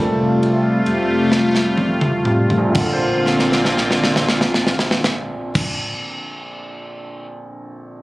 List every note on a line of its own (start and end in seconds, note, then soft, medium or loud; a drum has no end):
0.00 0.82 F1 loud
0.00 2.73 C3 medium
0.00 0.56 F3 medium
0.00 0.56 G3 medium
0.00 2.74 G3 medium
0.00 1.74 A3 medium
0.00 2.73 A3 medium
0.00 2.74 F4 medium
0.00 1.74 A4 medium
0.43 ride soft
0.86 2.22 F1 medium
0.86 ride soft
1.32 snare medium
1.55 snare medium
1.77 high tom medium
2.01 mid tom medium
2.25 2.73 F1 medium
2.25 mid tom loud
2.50 floor tom medium
2.58 5.63 A#1 medium
2.65 5.66 F2 soft
2.72 5.71 A#1 medium
2.72 5.70 D3 medium
2.72 5.71 D3 medium
2.72 5.71 A#3 medium
2.72 5.72 F4 medium
2.72 kick loud
2.72 crash medium
2.76 5.73 A#3 soft
2.76 5.72 C4 medium
2.86 5.77 F4 medium
2.93 5.80 C5 medium
3.26 snare medium
3.39 snare soft
3.52 snare medium
3.65 snare medium
3.77 snare medium
3.91 snare medium
4.04 snare medium
4.16 snare medium
4.29 snare medium
4.41 snare medium
4.54 snare medium
4.67 snare medium
4.79 snare medium
4.91 snare medium
5.04 snare medium
5.55 kick loud
5.55 crash loud